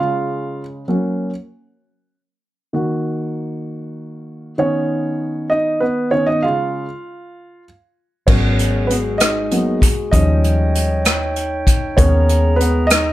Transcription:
Already playing: C#3 G#3 F4 F5
0.88 F#3 A#3 C#4
2.73 D#3 A#3 F#4
4.58 D#3 B3 C#4 D#4 C#5
5.50 D#4 D#5
5.80 B3 B4
6.11 D#3 B3 C#4 D#4 C#5
6.26 D#4 D#5
6.43 C#3 G#3 F4 F5
8.27 G#1 F#3 G#3 B3 C#4 F#4 G#4 A#4 C#5, kick, crash
8.59 closed hi-hat
8.87 B3 B4, closed hi-hat
9.18 D#4 D#5, cross-stick, closed hi-hat
9.51 F#3 A#3 B3, closed hi-hat
9.82 kick, closed hi-hat
10.11 D#2 F3 G3 C#4 D#4 C#5 D#5 G5, kick, closed hi-hat
10.44 closed hi-hat
10.75 closed hi-hat
11.05 cross-stick, closed hi-hat
11.36 closed hi-hat
11.67 kick, closed hi-hat
11.97 D#2 G#3 B3 C#4 G#4 A#4 C#5 A#5, kick, closed hi-hat
12.29 closed hi-hat
12.56 B4
12.60 B3, closed hi-hat
12.87 D#5, closed hi-hat
12.91 D#4, cross-stick

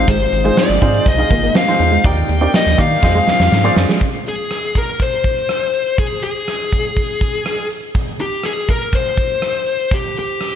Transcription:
Already playing: G#2 D#3 G#3 C4 D#4 F4 G#4 C5
0.08 G#1 G#3 C5, kick, closed hi-hat, tambourine
0.20 closed hi-hat
0.32 G#1, muted clean electric guitar stroke, closed hi-hat, tambourine
0.44 G#3 D#4 F4 G#4 C5, closed hi-hat
0.57 D5, snare, tambourine
0.69 G#1, closed hi-hat
0.81 G#2 C4 D#4 F4 G#4 C5, kick, closed hi-hat, tambourine
0.94 closed hi-hat, tambourine
1.06 C2 D#5, muted clean electric guitar stroke, kick, closed hi-hat, tambourine
1.18 D#4 F4 G#4 D#5, closed hi-hat, tambourine
1.31 G#1 A#3, kick, closed hi-hat, tambourine
1.43 A#3, closed hi-hat
1.55 C4 F5, snare, tambourine
1.67 D#4 F4 G#4 C5, closed hi-hat
1.80 E2, muted clean electric guitar stroke, open hi-hat, tambourine
1.92 G#3, closed hi-hat, tambourine
2.04 D#2 D#3 A#3 D#4 G4 A#4 D5 G5, kick, closed hi-hat, tambourine
2.17 closed hi-hat
2.29 D#2, muted clean electric guitar stroke, closed hi-hat, tambourine
2.41 C4 D#4 G4 A#4 D5, closed hi-hat, tambourine
2.54 D#5, snare, tambourine
2.66 D#2, closed hi-hat
2.78 D#3 A#3 D#4 G4 A#4 D5 F5, kick, closed hi-hat, tambourine
2.91 closed hi-hat, tambourine
3.03 F2 G#3 C4 F4 G#4 C5 D#5, muted clean electric guitar stroke, kick, snare, tambourine
3.15 G#3 F4 G#4 C5 F5, tambourine
3.27 F2 G#3, snare, tambourine
3.40 F2, snare
3.52 G#2, snare, tambourine
3.64 A#3 F4 G#4 C5 D5
3.76 F#2, muted clean electric guitar stroke, snare, tambourine
3.89 G#3, snare, tambourine
4.01 kick, closed hi-hat
4.14 closed hi-hat
4.26 G#4, closed hi-hat
4.39 closed hi-hat
4.51 cross-stick, closed hi-hat
4.63 closed hi-hat
4.75 A#4, kick, closed hi-hat
4.88 closed hi-hat
5.00 C5, kick, closed hi-hat
5.12 closed hi-hat
5.24 kick, closed hi-hat
5.37 closed hi-hat
5.49 cross-stick, closed hi-hat
5.62 closed hi-hat
5.74 closed hi-hat
5.86 closed hi-hat
5.98 G#4, kick, closed hi-hat
6.11 closed hi-hat
6.23 G#4, closed hi-hat
6.36 closed hi-hat
6.48 cross-stick, closed hi-hat
6.60 closed hi-hat
6.72 kick, closed hi-hat
6.85 closed hi-hat
6.97 kick, closed hi-hat
7.09 closed hi-hat
7.21 kick, closed hi-hat
7.33 closed hi-hat
7.46 cross-stick, closed hi-hat
7.58 closed hi-hat
7.70 closed hi-hat
7.83 closed hi-hat
7.95 kick, closed hi-hat
8.07 closed hi-hat
8.19 G4, closed hi-hat
8.32 closed hi-hat
8.43 G#4, cross-stick, closed hi-hat
8.56 closed hi-hat
8.69 A#4, kick, closed hi-hat
8.80 closed hi-hat
8.93 C5, kick, closed hi-hat
9.05 closed hi-hat
9.17 kick, closed hi-hat
9.30 closed hi-hat
9.42 cross-stick, closed hi-hat
9.55 closed hi-hat
9.66 closed hi-hat
9.79 closed hi-hat
9.91 G4, kick, closed hi-hat
10.04 closed hi-hat
10.16 G4, closed hi-hat
10.29 closed hi-hat
10.41 cross-stick, closed hi-hat

